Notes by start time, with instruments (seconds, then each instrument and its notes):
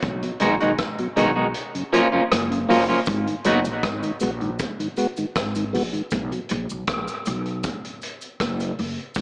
0.02 upright bass B1, kick, closed hi-hat
0.23 tonewheel organ B2 F#3, closed hi-hat
0.40 upright bass A#1, clean electric guitar D#3 G#3 D#4 F#4, tonewheel organ G#3 B3 D#4, closed hi-hat
0.60 upright bass B1, clean electric guitar D#3 G#3 D#4 F#4, closed hi-hat
0.78 upright bass A#1, kick, cross-stick, closed hi-hat
0.98 tonewheel organ B2 F#3, closed hi-hat
1.16 upright bass B1, clean electric guitar D#3 G#3 D#4 F#4, tonewheel organ G#3 B3 D#4, closed hi-hat
1.36 tonewheel organ B2 F#3, clean electric guitar D#3 G#3 D#4 F#4
1.54 closed hi-hat
1.75 tonewheel organ F#2 C#3, closed hi-hat
1.93 clean electric guitar F3 A#3 C#4 F4, tonewheel organ F#3 A#3 F4, closed hi-hat
2.12 tonewheel organ F#2 C#3, clean electric guitar F3 A#3 C#4 F4
2.32 upright bass F#1, cross-stick, closed hi-hat
2.50 tonewheel organ F#2 C#3, closed hi-hat
2.69 upright bass F#1, clean electric guitar F3 A#3 C#4 F4, tonewheel organ F#3 A#3 F4, open hi-hat
2.89 tonewheel organ F#2 C#3, clean electric guitar F3 A#3 C#4 F4
3.06 upright bass G#1, kick, closed hi-hat, cabasa
3.27 tonewheel organ G#2 D#3, closed hi-hat
3.44 upright bass F#1, clean electric guitar F#3 B3 D#4 F#4, tonewheel organ G#3 B3 F#4, closed hi-hat, cabasa
3.65 upright bass A#1, closed hi-hat, cabasa
3.83 upright bass G#1, kick, cross-stick, closed hi-hat
4.03 tonewheel organ G#2 D#3, closed hi-hat, cabasa
4.20 upright bass A#1, tonewheel organ G#3 B3 F#4, closed hi-hat, cabasa
4.41 tonewheel organ G#2 D#3, closed hi-hat
4.59 kick, closed hi-hat, cabasa
4.80 tonewheel organ G#2 D#3, closed hi-hat
4.97 tonewheel organ G#3 B3 F#4, closed hi-hat, cabasa
5.17 tonewheel organ G#2 D#3, closed hi-hat, cabasa
5.36 upright bass G#1, kick, cross-stick, closed hi-hat, cabasa
5.55 tonewheel organ G#2 D#3, closed hi-hat, cabasa
5.73 upright bass A#1, tonewheel organ G#3 B3 F#4, open hi-hat
5.93 tonewheel organ G#2 D#3, closed hi-hat
6.11 upright bass B1, kick, closed hi-hat, cabasa
6.32 tonewheel organ B2 F#3, closed hi-hat
6.49 upright bass A#1, closed hi-hat, cabasa
6.70 upright bass B1, cabasa
6.87 upright bass A#1, kick, cross-stick, closed hi-hat
7.08 closed hi-hat, cabasa
7.26 upright bass B1, closed hi-hat, cabasa
7.46 closed hi-hat
7.63 kick, closed hi-hat, cabasa
7.85 closed hi-hat
8.02 closed hi-hat, cabasa
8.21 closed hi-hat, cabasa
8.40 upright bass F#1, kick, cross-stick, closed hi-hat, cabasa
8.60 closed hi-hat, cabasa
8.79 upright bass F#1, open hi-hat
8.98 closed hi-hat
9.15 upright bass G#1, kick, closed hi-hat, cabasa